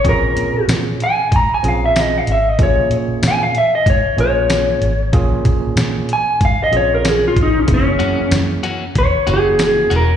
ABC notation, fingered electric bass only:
X:1
M:4/4
L:1/16
Q:"Swing 16ths" 1/4=94
K:Bbm
V:1 name="Fingered electric bass" clef=bass
B,,,2 B,, z B,,2 z2 A,, z B,,,4 A,,,2 | B,,,2 B,, z B,,2 z2 A,, z B,,,4 A,,,2 | B,,,2 B,, z B,,2 z2 A,, z B,,,4 A,,,2 | G,,,2 G,, z G,,2 z2 E,, z G,,,4 _F,,,2 |]